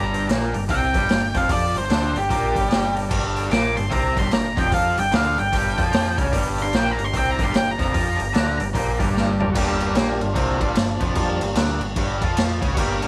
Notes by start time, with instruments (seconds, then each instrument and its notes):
Already playing: picked electric bass G1, overdriven electric guitar G2 G3
0.04 lead electric guitar A#5
0.13 tonewheel organ D4 G4 C5, open hi-hat
0.26 picked electric bass A#1, overdriven electric guitar A#2 A#3, tonewheel organ D4 G4 A#4, open hi-hat
0.31 snare
0.53 picked electric bass G1, overdriven electric guitar G2, tonewheel organ D4 G4 A#4, open hi-hat
0.69 picked electric bass C2, overdriven electric guitar C3 C4, tonewheel organ D4 G4, lead electric guitar G5, kick, open hi-hat
0.73 tonewheel organ A#4
0.94 picked electric bass G1, overdriven electric guitar G2 G3, tonewheel organ D4 G4 C5, kick, open hi-hat
1.09 picked electric bass G1, overdriven electric guitar G2, tonewheel organ D4 G4 A#4, snare, open hi-hat
1.34 picked electric bass F1, overdriven electric guitar F2 F3, tonewheel organ D4 G4 C5, lead electric guitar F5, kick, open hi-hat
1.49 picked electric bass F2, overdriven electric guitar F3 F4, tonewheel organ D4 G4 A4, lead electric guitar D5, kick, open hi-hat
1.74 picked electric bass G1, overdriven electric guitar G2, tonewheel organ D4 G4 A#4, lead electric guitar C5, open hi-hat
1.87 picked electric bass D2, overdriven electric guitar D3 D4, tonewheel organ D4 G4 C5, open hi-hat
1.91 lead electric guitar C5, snare
2.14 picked electric bass G1, overdriven electric guitar G2, tonewheel organ D4 G4 A#4, lead electric guitar G4, open hi-hat
2.26 overdriven electric guitar A#2, tonewheel organ D4 G4 A#4
2.30 picked electric bass A#1, overdriven electric guitar A#3, kick, open hi-hat
2.52 picked electric bass G1, overdriven electric guitar G2 G3, tonewheel organ D4 G4 A#4, kick, open hi-hat
2.68 tonewheel organ D4 G4 A#4, snare, open hi-hat
2.94 tonewheel organ D4 G4 A#4, open hi-hat
3.09 picked electric bass G1, overdriven electric guitar G2 G3, tonewheel organ D4 G4 A#4, kick, crash
3.36 tonewheel organ D4 G4 A4, open hi-hat
3.50 picked electric bass A#1, overdriven electric guitar A#2 A#3, tonewheel organ D4 G4 C5, lead electric guitar D6, snare, open hi-hat
3.75 picked electric bass G1, overdriven electric guitar G2, tonewheel organ D4 G4 A4, lead electric guitar C6, open hi-hat
3.90 picked electric bass C2, overdriven electric guitar C3 C4, tonewheel organ D4 G4 A#4, lead electric guitar A#5, kick, open hi-hat
4.15 picked electric bass G1, overdriven electric guitar G2 G3, tonewheel organ D4 G4 A#4, lead electric guitar C6, kick, open hi-hat
4.31 picked electric bass G1, overdriven electric guitar G2, tonewheel organ D4 G4 A#4, lead electric guitar A#5, snare, open hi-hat
4.56 picked electric bass F1, overdriven electric guitar F2 F3, tonewheel organ D4 G4 A#4, lead electric guitar G5, kick, open hi-hat
4.70 picked electric bass F2, overdriven electric guitar F3 F4, tonewheel organ D4 G4 A#4, lead electric guitar F5, kick, open hi-hat
4.95 picked electric bass G1, overdriven electric guitar G2, tonewheel organ D4 G4 A4, open hi-hat
4.99 lead electric guitar G5
5.11 picked electric bass D2, overdriven electric guitar D3 D4, tonewheel organ D4 G4 A#4, snare, open hi-hat
5.15 lead electric guitar F5
5.37 picked electric bass G1, overdriven electric guitar G2, tonewheel organ D4 G4 A#4, lead electric guitar G5, open hi-hat
5.51 picked electric bass G1, overdriven electric guitar G2 G3, tonewheel organ D4 G4 A#4, kick, open hi-hat
5.77 picked electric bass F2, overdriven electric guitar F3 F4, tonewheel organ D4 G4 A4, kick, open hi-hat
5.91 tonewheel organ D4 G4 A#4, snare, open hi-hat
6.16 picked electric bass C#2, overdriven electric guitar C#3 C#4, tonewheel organ D4 G4 A#4, kick, open hi-hat
6.31 picked electric bass G1, overdriven electric guitar G2 G3, tonewheel organ D4 G4 A#4, kick, open hi-hat
6.56 tonewheel organ D4 G4 A#4, open hi-hat
6.62 lead electric guitar C6
6.71 picked electric bass A#1, overdriven electric guitar A#2 A#3, tonewheel organ D4 G4 A#4, snare, open hi-hat
6.76 lead electric guitar G5
6.91 lead electric guitar A#5
6.96 picked electric bass G1, overdriven electric guitar G2, tonewheel organ D4 G4 A#4, open hi-hat
7.04 lead electric guitar C6
7.09 tonewheel organ D4 G4 A#4
7.13 picked electric bass C2, overdriven electric guitar C3 C4, kick, open hi-hat
7.18 lead electric guitar G5
7.31 tonewheel organ D4, lead electric guitar A#5
7.35 picked electric bass G1, overdriven electric guitar G2, tonewheel organ G4 A#4, kick, open hi-hat
7.40 overdriven electric guitar G3
7.44 lead electric guitar C6
7.49 tonewheel organ D4 G4 A#4
7.54 picked electric bass G1, overdriven electric guitar G2, lead electric guitar G5, snare, open hi-hat
7.71 lead electric guitar A#5
7.76 picked electric bass F1, overdriven electric guitar F2 F3, tonewheel organ D4 G4 A#4, kick, open hi-hat
7.83 lead electric guitar A#5
7.91 picked electric bass F2, overdriven electric guitar F3 F4, tonewheel organ D4 G4 A#4, kick, open hi-hat
8.16 overdriven electric guitar G2, tonewheel organ D4 G4 A#4, open hi-hat
8.20 picked electric bass G1
8.32 picked electric bass D2, overdriven electric guitar D3 D4, tonewheel organ D4 G4 A#4, snare, open hi-hat
8.59 picked electric bass G1, overdriven electric guitar G2, tonewheel organ D4 G4 A#4, open hi-hat
8.74 picked electric bass A#1, overdriven electric guitar A#2 A#3, tonewheel organ D4 G4 C5, kick, open hi-hat
8.98 picked electric bass G1, overdriven electric guitar G2 G3, tonewheel organ D4 G4 A#4, kick, open hi-hat
9.14 tonewheel organ D4 G4 A#4, snare
9.40 tonewheel organ D4 G4 A#4, floor tom
9.52 picked electric bass G1, overdriven electric guitar G2 G3, tonewheel organ G3 A#3 D4 F#4, kick, crash
9.57 tonewheel organ G4
9.80 tonewheel organ A#3 G4, crash
9.94 picked electric bass A#1, overdriven electric guitar A#2 A#3, tonewheel organ A#3 G4, snare, crash
10.19 picked electric bass G1, overdriven electric guitar G2, tonewheel organ D4 F4, crash
10.34 picked electric bass C2, overdriven electric guitar C3 C4, tonewheel organ G3 A#3 D4 F4, kick, crash
10.59 picked electric bass G1, overdriven electric guitar G2 G3, tonewheel organ D4 F4, kick, crash
10.74 picked electric bass G1, overdriven electric guitar G2, tonewheel organ F3 D4, snare, crash
11.00 picked electric bass F1, overdriven electric guitar F2 F3, tonewheel organ F3 D4, kick, crash
11.14 picked electric bass F2, overdriven electric guitar F3 F4, tonewheel organ G3 A#3 D4, kick, crash
11.18 tonewheel organ F3
11.41 picked electric bass G1, overdriven electric guitar G2, tonewheel organ A#3, crash
11.55 picked electric bass D2, overdriven electric guitar D3 D4, snare, crash
11.80 picked electric bass G1, overdriven electric guitar G2, crash
11.96 picked electric bass G1, overdriven electric guitar G2 G3, kick, crash
12.21 picked electric bass F2, overdriven electric guitar F3 F4, kick, crash
12.37 snare, crash
12.61 picked electric bass C#2, overdriven electric guitar C#3 C#4, kick, crash
12.74 picked electric bass G1, overdriven electric guitar G2 G3, tonewheel organ F#4, kick, crash
12.79 tonewheel organ A#3 G4
13.02 tonewheel organ A#3 G4, crash